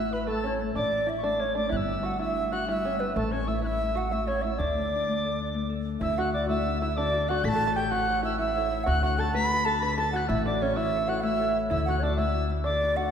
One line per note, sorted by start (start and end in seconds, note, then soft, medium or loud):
0.00 0.73 A1 medium
0.00 0.30 A3 medium
0.00 1.78 B3 medium
0.00 0.12 E4 medium
0.00 0.24 E4 medium
0.00 0.97 F#4 medium
0.00 1.01 D5 soft
0.00 0.14 E6 medium
0.12 0.45 E4 medium
0.12 0.23 B4 medium
0.12 0.27 B5 medium
0.25 0.43 A3 medium
0.25 0.48 A4 medium
0.25 0.29 B4 medium
0.25 0.54 A5 medium
0.30 0.61 A3 medium
0.44 0.59 C#4 medium
0.44 0.76 E4 medium
0.44 0.62 C#5 medium
0.61 0.93 A3 medium
0.75 1.70 A1 medium
0.75 1.06 D4 medium
0.75 1.08 E4 medium
0.75 1.11 D5 loud
0.75 1.06 D6 medium
1.06 1.22 E4 medium
1.06 1.40 E4 soft
1.06 1.24 E5 loud
1.18 1.27 C#6 medium
1.23 1.57 A3 medium
1.23 1.40 D4 medium
1.23 1.41 D5 loud
1.23 1.56 D6 medium
1.40 1.55 C#4 medium
1.40 3.32 E4 medium
1.40 1.56 C#5 medium
1.55 3.14 A3 medium
1.55 1.69 D4 medium
1.55 1.73 D5 medium
1.55 1.71 D6 medium
1.69 3.13 G1 medium
1.69 2.03 G3 medium
1.69 2.01 E4 medium
1.69 2.07 E5 loud
1.69 1.78 F#6 medium
1.77 2.17 E6 medium
1.88 2.19 D4 soft
2.03 2.36 G3 soft
2.03 2.18 F#4 medium
2.03 2.21 F#5 medium
2.19 2.51 D4 medium
2.19 2.50 E4 medium
2.19 2.54 E5 loud
2.19 2.50 E6 medium
2.37 2.66 G3 soft
2.51 2.84 D4 soft
2.51 2.68 F#4 medium
2.51 2.67 F#5 medium
2.51 2.68 F#6 medium
2.67 2.98 G3 medium
2.67 2.84 E4 medium
2.67 3.01 E5 loud
2.67 2.73 F#6 medium
2.72 3.16 E6 medium
2.85 3.00 C#4 medium
2.85 4.92 D4 medium
2.99 3.21 G3 medium
2.99 3.15 B3 medium
2.99 3.18 B4 medium
3.15 4.56 A1 medium
3.15 3.47 A3 medium
3.15 3.31 A3 medium
3.15 3.33 A4 medium
3.15 3.33 A5 medium
3.32 3.49 C#4 medium
3.32 3.64 E4 medium
3.32 3.48 C#5 medium
3.32 3.49 C#6 medium
3.47 3.81 A3 medium
3.47 3.61 E4 medium
3.47 3.63 E5 medium
3.47 3.63 E6 medium
3.62 3.95 E4 medium
3.62 3.96 E4 medium
3.62 3.99 E5 loud
3.62 3.68 F#6 medium
3.67 4.08 E6 medium
3.82 4.11 A3 medium
3.95 4.29 E4 medium
3.95 4.10 F#4 medium
3.95 4.14 F#5 medium
4.11 4.44 A3 medium
4.11 4.27 E4 medium
4.11 4.29 E5 loud
4.11 4.27 E6 medium
4.27 4.44 C#4 medium
4.27 6.17 E4 medium
4.27 4.43 C#5 medium
4.27 4.45 C#6 medium
4.42 4.76 A3 soft
4.42 4.58 E4 medium
4.42 4.56 E5 medium
4.42 4.60 E6 medium
4.56 5.99 D2 medium
4.56 6.00 D3 medium
4.56 5.67 D4 medium
4.56 5.66 D5 loud
4.56 5.71 D6 medium
4.77 5.07 A3 soft
4.93 5.38 D4 medium
5.08 5.54 A3 medium
5.24 5.69 A4 medium
5.38 5.84 D4 soft
5.54 6.48 A3 medium
5.70 7.61 A4 medium
5.85 6.16 D4 medium
6.00 7.41 D2 medium
6.00 6.96 D3 medium
6.00 6.17 E4 medium
6.00 6.19 E5 loud
6.00 6.18 E6 medium
6.16 6.32 D4 soft
6.16 6.33 E4 soft
6.16 6.34 F#4 medium
6.16 6.47 F#4 medium
6.16 6.33 F#5 medium
6.16 6.33 F#6 medium
6.33 6.65 D4 medium
6.33 6.66 E4 medium
6.33 6.66 F#4 medium
6.33 6.48 D5 medium
6.33 6.48 D6 medium
6.48 7.44 A3 medium
6.48 6.80 E4 medium
6.48 6.80 E5 loud
6.48 6.79 E6 medium
6.66 6.80 D4 medium
6.66 6.81 E4 soft
6.66 6.81 F#4 medium
6.80 7.12 D4 soft
6.80 7.12 E4 soft
6.80 6.97 E4 medium
6.80 7.13 F#4 medium
6.80 6.95 E5 medium
6.80 6.98 E6 medium
6.96 7.50 D3 medium
6.96 7.30 D4 medium
6.96 7.30 D5 loud
6.96 7.30 D6 medium
7.12 7.27 D4 medium
7.12 7.28 E4 soft
7.12 7.29 F#4 medium
7.28 7.68 D4 soft
7.28 7.61 E4 soft
7.28 9.04 F#4 medium
7.28 7.44 F#4 medium
7.28 7.45 F#5 medium
7.28 7.46 F#6 medium
7.44 8.84 A1 loud
7.44 8.40 A3 medium
7.44 7.54 A4 medium
7.44 7.78 A5 loud
7.44 7.50 B6 medium
7.49 7.75 A6 medium
7.55 7.66 A4 medium
7.61 7.76 E4 medium
7.61 7.77 A4 soft
7.61 7.77 C#5 soft
7.67 7.76 A4 loud
7.75 8.08 E4 medium
7.75 7.91 G4 medium
7.75 8.09 A4 soft
7.75 8.09 C#5 medium
7.75 7.92 G5 loud
7.75 7.92 G6 medium
7.91 8.92 E3 medium
7.91 8.22 F#4 medium
7.91 8.23 F#5 loud
7.91 8.24 F#6 medium
8.09 8.24 E4 medium
8.09 8.24 A4 soft
8.09 8.25 C#5 medium
8.23 8.37 E4 medium
8.23 8.54 E4 soft
8.23 8.55 A4 soft
8.23 8.56 C#5 medium
8.23 8.37 E5 medium
8.23 8.39 E6 medium
8.38 9.35 A3 medium
8.38 8.83 E4 medium
8.38 8.85 E5 loud
8.38 8.84 E6 medium
8.55 8.70 E4 medium
8.55 8.71 A4 medium
8.55 8.71 C#5 medium
8.71 9.03 E4 medium
8.71 10.45 A4 soft
8.71 8.93 C#5 medium
8.84 10.27 D2 loud
8.84 9.81 D3 medium
8.84 9.02 F#4 loud
8.84 9.01 F#5 loud
8.84 9.02 F#6 loud
9.02 9.19 D4 soft
9.02 9.19 E4 soft
9.02 9.18 F#4 medium
9.02 9.19 F#4 soft
9.02 9.21 F#5 loud
9.02 9.21 F#6 medium
9.19 9.50 D4 medium
9.19 9.51 E4 medium
9.19 9.51 F#4 medium
9.19 9.34 A4 medium
9.19 9.35 A5 loud
9.19 9.34 A6 medium
9.34 10.28 A3 medium
9.34 9.64 B4 medium
9.34 9.67 B5 loud
9.34 9.64 B6 loud
9.51 9.66 D4 medium
9.51 9.66 E4 soft
9.51 9.67 F#4 medium
9.65 9.98 D4 soft
9.65 9.98 E4 soft
9.65 9.98 F#4 medium
9.65 9.82 A4 medium
9.65 9.81 A5 loud
9.65 9.84 A6 medium
9.79 10.35 D3 medium
9.79 9.97 B4 medium
9.79 9.96 B5 loud
9.79 10.02 B6 loud
9.96 10.12 D4 medium
9.96 10.13 E4 medium
9.96 10.13 F#4 medium
9.96 10.14 A4 medium
9.96 10.12 A5 loud
9.96 10.18 A6 medium
10.12 10.52 D4 medium
10.12 10.44 E4 soft
10.12 10.28 F#4 medium
10.12 11.88 F#4 medium
10.12 10.27 F#5 loud
10.16 10.30 F#6 medium
10.28 11.69 A1 loud
10.28 11.22 A3 medium
10.28 10.45 E4 medium
10.28 10.45 E5 loud
10.28 10.45 E6 medium
10.44 10.62 D4 medium
10.44 10.59 E4 soft
10.44 10.60 A4 soft
10.44 10.61 C#5 medium
10.44 10.64 D5 medium
10.44 10.63 D6 medium
10.60 10.76 C#4 medium
10.60 10.90 E4 medium
10.60 10.92 A4 soft
10.60 10.95 C#5 medium
10.60 10.75 C#5 medium
10.60 10.78 C#6 medium
10.76 11.77 E3 medium
10.76 11.07 E4 medium
10.76 11.09 E5 loud
10.76 11.11 E6 medium
10.90 11.06 E4 soft
10.90 11.07 A4 soft
10.96 11.08 C#5 medium
11.07 11.39 E4 soft
11.07 11.23 F#4 medium
11.07 11.39 A4 soft
11.07 11.39 C#5 medium
11.07 11.22 F#5 medium
11.07 11.23 F#6 medium
11.21 12.18 A3 medium
11.21 11.57 E4 medium
11.21 11.58 E5 loud
11.21 11.57 E6 medium
11.39 11.54 E4 medium
11.39 11.54 A4 medium
11.39 11.55 C#5 medium
11.54 11.87 E4 medium
11.54 13.11 A4 soft
11.54 11.77 C#5 medium
11.70 13.11 D2 medium
11.70 12.65 D3 medium
11.70 11.88 E4 medium
11.70 11.84 E5 loud
11.70 11.87 E6 medium
11.85 12.02 D4 soft
11.85 12.02 E4 soft
11.85 12.03 F#4 soft
11.85 12.02 F#4 medium
11.85 11.97 F#5 medium
11.89 12.05 F#6 medium
11.99 12.34 D4 soft
11.99 12.34 E4 soft
11.99 12.03 C#5 medium
11.99 12.15 D5 medium
12.03 12.18 D4 medium
12.03 12.35 F#4 medium
12.03 12.20 D6 medium
12.15 13.11 A3 medium
12.15 12.33 E4 medium
12.15 12.42 E5 loud
12.15 12.51 E6 medium
12.34 12.49 D4 medium
12.34 12.49 E4 medium
12.34 12.49 E4 soft
12.34 12.50 F#4 medium
12.49 12.82 D4 medium
12.49 12.83 E4 soft
12.49 12.83 F#4 medium
12.64 13.11 D3 medium
12.64 12.95 D4 medium
12.64 12.98 D5 loud
12.64 12.92 D6 medium
12.83 12.97 D4 soft
12.83 12.98 E4 medium
12.83 12.98 F#4 medium
12.97 13.11 D4 soft
12.97 13.11 E4 medium
12.97 13.11 F#4 medium
12.97 13.11 F#5 loud